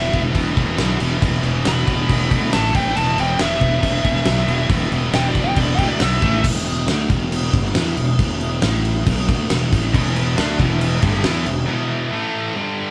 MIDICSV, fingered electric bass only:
0, 0, Header, 1, 2, 480
1, 0, Start_track
1, 0, Key_signature, 1, "minor"
1, 0, Tempo, 435730
1, 1356, Time_signature, 4, 2, 24, 8
1, 14217, End_track
2, 0, Start_track
2, 0, Title_t, "Fingered electric bass"
2, 0, Program_c, 0, 33
2, 151, Note_on_c, 0, 28, 82
2, 341, Note_off_c, 0, 28, 0
2, 381, Note_on_c, 0, 28, 96
2, 574, Note_off_c, 0, 28, 0
2, 624, Note_on_c, 0, 28, 93
2, 815, Note_off_c, 0, 28, 0
2, 859, Note_on_c, 0, 35, 92
2, 1052, Note_off_c, 0, 35, 0
2, 1105, Note_on_c, 0, 28, 96
2, 1295, Note_off_c, 0, 28, 0
2, 1346, Note_on_c, 0, 28, 99
2, 1535, Note_off_c, 0, 28, 0
2, 1581, Note_on_c, 0, 28, 90
2, 1772, Note_off_c, 0, 28, 0
2, 1835, Note_on_c, 0, 28, 94
2, 2020, Note_off_c, 0, 28, 0
2, 2064, Note_on_c, 0, 28, 85
2, 2253, Note_off_c, 0, 28, 0
2, 2306, Note_on_c, 0, 28, 96
2, 2494, Note_off_c, 0, 28, 0
2, 2542, Note_on_c, 0, 38, 90
2, 2731, Note_off_c, 0, 38, 0
2, 2806, Note_on_c, 0, 33, 88
2, 2985, Note_off_c, 0, 33, 0
2, 3029, Note_on_c, 0, 33, 88
2, 3214, Note_off_c, 0, 33, 0
2, 3276, Note_on_c, 0, 28, 89
2, 3459, Note_off_c, 0, 28, 0
2, 3510, Note_on_c, 0, 28, 91
2, 3695, Note_off_c, 0, 28, 0
2, 3750, Note_on_c, 0, 28, 90
2, 3934, Note_off_c, 0, 28, 0
2, 3983, Note_on_c, 0, 28, 87
2, 4170, Note_off_c, 0, 28, 0
2, 4219, Note_on_c, 0, 28, 96
2, 4407, Note_off_c, 0, 28, 0
2, 4457, Note_on_c, 0, 28, 96
2, 4646, Note_off_c, 0, 28, 0
2, 4691, Note_on_c, 0, 35, 90
2, 4882, Note_off_c, 0, 35, 0
2, 4937, Note_on_c, 0, 28, 94
2, 5126, Note_off_c, 0, 28, 0
2, 5171, Note_on_c, 0, 28, 94
2, 5363, Note_off_c, 0, 28, 0
2, 5415, Note_on_c, 0, 28, 87
2, 5605, Note_off_c, 0, 28, 0
2, 5655, Note_on_c, 0, 28, 100
2, 5845, Note_off_c, 0, 28, 0
2, 5896, Note_on_c, 0, 28, 91
2, 6085, Note_off_c, 0, 28, 0
2, 6127, Note_on_c, 0, 28, 102
2, 6320, Note_off_c, 0, 28, 0
2, 6370, Note_on_c, 0, 38, 93
2, 6562, Note_off_c, 0, 38, 0
2, 6617, Note_on_c, 0, 35, 84
2, 6806, Note_off_c, 0, 35, 0
2, 6856, Note_on_c, 0, 33, 95
2, 7045, Note_off_c, 0, 33, 0
2, 7091, Note_on_c, 0, 28, 91
2, 7544, Note_off_c, 0, 28, 0
2, 7566, Note_on_c, 0, 38, 101
2, 7798, Note_off_c, 0, 38, 0
2, 7824, Note_on_c, 0, 28, 88
2, 8271, Note_off_c, 0, 28, 0
2, 8296, Note_on_c, 0, 31, 105
2, 8523, Note_off_c, 0, 31, 0
2, 8536, Note_on_c, 0, 40, 94
2, 8764, Note_off_c, 0, 40, 0
2, 8779, Note_on_c, 0, 28, 82
2, 9005, Note_off_c, 0, 28, 0
2, 9021, Note_on_c, 0, 28, 99
2, 9470, Note_off_c, 0, 28, 0
2, 9494, Note_on_c, 0, 33, 102
2, 9946, Note_off_c, 0, 33, 0
2, 9991, Note_on_c, 0, 35, 100
2, 10213, Note_off_c, 0, 35, 0
2, 10224, Note_on_c, 0, 38, 108
2, 10449, Note_off_c, 0, 38, 0
2, 10467, Note_on_c, 0, 28, 99
2, 10691, Note_off_c, 0, 28, 0
2, 10713, Note_on_c, 0, 33, 99
2, 10934, Note_off_c, 0, 33, 0
2, 10949, Note_on_c, 0, 28, 95
2, 11396, Note_off_c, 0, 28, 0
2, 11438, Note_on_c, 0, 38, 93
2, 11658, Note_off_c, 0, 38, 0
2, 11666, Note_on_c, 0, 28, 97
2, 12115, Note_off_c, 0, 28, 0
2, 12146, Note_on_c, 0, 31, 109
2, 12372, Note_off_c, 0, 31, 0
2, 12392, Note_on_c, 0, 40, 94
2, 12616, Note_off_c, 0, 40, 0
2, 12631, Note_on_c, 0, 28, 83
2, 12856, Note_off_c, 0, 28, 0
2, 14217, End_track
0, 0, End_of_file